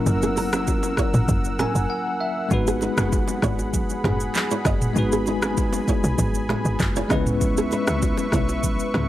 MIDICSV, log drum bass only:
0, 0, Header, 1, 2, 480
1, 0, Start_track
1, 0, Key_signature, 5, "minor"
1, 0, Tempo, 612245
1, 50, Time_signature, 4, 2, 24, 8
1, 7123, End_track
2, 0, Start_track
2, 0, Title_t, "Log drum bass"
2, 0, Program_c, 0, 39
2, 50, Note_on_c, 0, 30, 121
2, 863, Note_off_c, 0, 30, 0
2, 893, Note_on_c, 0, 32, 91
2, 987, Note_off_c, 0, 32, 0
2, 1007, Note_on_c, 0, 30, 101
2, 1303, Note_off_c, 0, 30, 0
2, 1373, Note_on_c, 0, 30, 88
2, 1467, Note_off_c, 0, 30, 0
2, 1969, Note_on_c, 0, 32, 116
2, 2264, Note_off_c, 0, 32, 0
2, 2334, Note_on_c, 0, 30, 91
2, 2528, Note_off_c, 0, 30, 0
2, 2687, Note_on_c, 0, 32, 99
2, 3077, Note_off_c, 0, 32, 0
2, 3170, Note_on_c, 0, 30, 93
2, 3364, Note_off_c, 0, 30, 0
2, 3649, Note_on_c, 0, 30, 94
2, 3843, Note_off_c, 0, 30, 0
2, 3888, Note_on_c, 0, 32, 110
2, 4702, Note_off_c, 0, 32, 0
2, 4734, Note_on_c, 0, 35, 91
2, 4828, Note_off_c, 0, 35, 0
2, 4848, Note_on_c, 0, 32, 98
2, 5144, Note_off_c, 0, 32, 0
2, 5215, Note_on_c, 0, 32, 90
2, 5308, Note_off_c, 0, 32, 0
2, 5331, Note_on_c, 0, 30, 98
2, 5524, Note_off_c, 0, 30, 0
2, 5571, Note_on_c, 0, 37, 108
2, 6060, Note_off_c, 0, 37, 0
2, 6175, Note_on_c, 0, 37, 86
2, 6369, Note_off_c, 0, 37, 0
2, 6529, Note_on_c, 0, 35, 91
2, 6918, Note_off_c, 0, 35, 0
2, 7010, Note_on_c, 0, 37, 94
2, 7123, Note_off_c, 0, 37, 0
2, 7123, End_track
0, 0, End_of_file